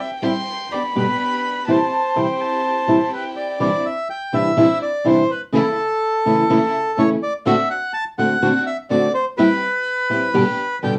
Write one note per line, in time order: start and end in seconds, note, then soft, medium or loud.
0.00 0.11 E5 medium
0.00 0.25 G5 medium
0.22 0.32 G3 medium
0.22 0.44 G3 medium
0.22 0.32 C4 medium
0.22 0.44 C4 medium
0.22 0.32 E4 medium
0.22 0.44 E4 medium
0.22 0.44 G4 medium
0.22 0.69 G5 medium
0.22 0.73 C6 medium
0.72 0.92 B3 medium
0.72 0.92 D4 medium
0.72 0.92 G4 medium
0.72 0.83 D5 medium
0.72 1.67 B5 medium
0.95 1.05 G2 medium
0.95 1.05 B2 medium
0.95 1.05 D3 medium
0.95 1.05 G3 medium
0.95 1.64 B3 medium
0.95 1.05 B3 medium
0.95 1.64 D4 medium
0.95 1.64 G4 medium
0.95 1.05 G4 medium
0.95 1.71 B4 medium
1.68 1.77 C3 medium
1.68 1.77 E3 medium
1.68 1.77 G3 medium
1.68 1.88 C4 medium
1.68 1.77 C4 medium
1.68 1.88 E4 medium
1.68 1.77 E4 medium
1.68 1.88 G4 medium
1.68 3.10 C5 medium
1.68 2.18 A5 medium
2.16 2.25 C3 medium
2.16 2.25 E3 medium
2.16 2.25 G3 medium
2.16 2.25 C4 medium
2.16 2.85 C4 medium
2.16 2.25 E4 medium
2.16 2.85 E4 medium
2.16 2.85 G4 medium
2.16 2.43 G5 medium
2.41 3.13 A5 medium
2.88 2.97 C3 medium
2.88 2.97 E3 medium
2.88 2.97 G3 medium
2.88 2.97 C4 medium
2.88 3.58 C4 medium
2.88 2.98 E4 medium
2.88 3.58 E4 medium
2.88 3.58 G4 medium
3.13 3.24 B4 medium
3.13 3.58 G5 medium
3.36 3.59 D5 medium
3.60 3.70 C3 medium
3.60 3.70 E3 medium
3.60 3.70 G3 loud
3.60 3.81 C4 medium
3.60 3.70 D4 loud
3.60 3.81 D4 medium
3.60 3.70 E4 loud
3.60 3.81 E4 medium
3.60 3.86 D5 medium
3.86 4.08 E5 medium
4.10 4.35 G5 loud
4.33 4.50 C3 medium
4.33 4.50 E3 medium
4.33 4.50 G3 medium
4.33 4.54 C4 medium
4.33 4.54 D4 soft
4.33 4.51 D4 medium
4.33 4.51 E4 medium
4.33 4.54 E4 medium
4.33 4.79 E5 loud
4.57 4.66 C3 medium
4.57 4.66 E3 medium
4.57 4.66 G3 medium
4.57 4.78 C4 medium
4.57 4.78 D4 medium
4.57 4.67 D4 medium
4.57 4.78 E4 loud
4.57 4.67 E4 loud
4.82 5.07 D5 medium
5.05 5.22 C3 medium
5.05 5.22 E3 medium
5.05 5.22 G3 medium
5.05 5.26 C4 medium
5.05 5.22 D4 medium
5.05 5.26 D4 medium
5.05 5.23 E4 medium
5.05 5.26 E4 medium
5.05 5.31 C5 loud
5.31 5.41 B4 medium
5.53 5.62 C#3 loud
5.53 5.74 C#3 medium
5.53 5.63 E3 loud
5.53 5.62 A3 loud
5.53 5.74 A3 medium
5.53 5.63 C#4 loud
5.53 5.74 C#4 medium
5.53 5.63 E4 loud
5.53 5.75 E4 loud
5.53 7.03 A4 loud
6.26 6.43 C#3 medium
6.26 6.47 C#3 medium
6.26 6.43 E3 medium
6.26 6.43 A3 medium
6.26 6.47 A3 medium
6.26 6.43 C#4 medium
6.26 6.47 C#4 medium
6.26 6.43 E4 medium
6.26 6.47 E4 medium
6.50 6.59 C#3 medium
6.50 6.70 C#3 medium
6.50 6.59 E3 loud
6.50 6.59 A3 loud
6.50 6.70 A3 medium
6.50 6.59 C#4 loud
6.50 6.70 C#4 medium
6.50 6.71 E4 loud
6.50 6.59 E4 loud
6.98 7.15 C#3 medium
6.98 7.18 C#3 medium
6.98 7.15 E3 medium
6.98 7.15 A3 medium
6.98 7.18 A3 medium
6.98 7.15 C#4 medium
6.98 7.19 C#4 medium
6.98 7.15 E4 medium
6.98 7.19 E4 medium
6.98 7.10 C#5 loud
7.23 7.34 D5 loud
7.46 7.55 D3 loud
7.46 7.55 A3 loud
7.46 7.66 C4 medium
7.46 7.55 C4 loud
7.46 7.67 D4 medium
7.46 7.55 F#4 loud
7.46 7.67 F#4 loud
7.46 7.69 E5 loud
7.70 7.92 F#5 loud
7.94 8.04 A5 loud
8.18 8.35 D3 medium
8.18 8.35 A3 medium
8.18 8.38 C4 medium
8.18 8.35 C4 medium
8.18 8.39 D4 medium
8.18 8.39 F#4 medium
8.18 8.35 F#4 medium
8.18 8.63 F#5 loud
8.42 8.51 D3 loud
8.42 8.51 A3 loud
8.42 8.62 C4 medium
8.42 8.51 C4 loud
8.42 8.62 D4 medium
8.42 8.62 F#4 loud
8.42 8.51 F#4 loud
8.67 8.77 E5 loud
8.90 9.07 D3 medium
8.90 9.07 A3 medium
8.90 9.10 C4 medium
8.90 9.07 C4 medium
8.90 9.11 D4 medium
8.90 9.11 F#4 medium
8.90 9.08 F#4 medium
8.90 9.13 D5 loud
9.15 9.25 C5 loud
9.38 9.58 G3 medium
9.38 9.47 G3 loud
9.38 9.58 C4 medium
9.38 9.47 C4 loud
9.38 9.58 E4 medium
9.38 9.48 E4 loud
9.38 9.58 G4 loud
9.38 10.79 B4 loud
10.10 10.27 G3 medium
10.10 10.31 G3 medium
10.10 10.28 C4 medium
10.10 10.31 C4 medium
10.10 10.28 E4 medium
10.10 10.31 E4 soft
10.10 10.31 G4 medium
10.34 10.43 G2 medium
10.34 10.43 B2 medium
10.34 10.43 D3 medium
10.34 10.44 G3 loud
10.34 10.44 B3 loud
10.34 10.55 B3 medium
10.34 10.55 D4 medium
10.34 10.44 G4 loud
10.34 10.55 G4 medium
10.83 10.99 G2 medium
10.83 10.99 B2 medium
10.83 10.99 D3 medium
10.83 10.99 G3 medium
10.83 10.99 B3 medium
10.83 10.99 D4 medium
10.83 10.99 G4 medium
10.83 10.94 G5 loud